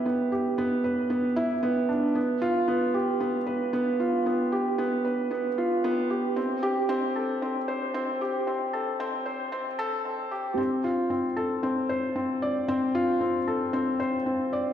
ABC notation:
X:1
M:4/4
L:1/8
Q:1/4=114
K:Ddor
V:1 name="Felt piano"
B, G B, B B, E B, D | B, F B, G B, B B, F | B, G B, B B, F B, G | C G C A C c C G |
C A C c C A C G | C F C A C c C d | C F C A C c C d |]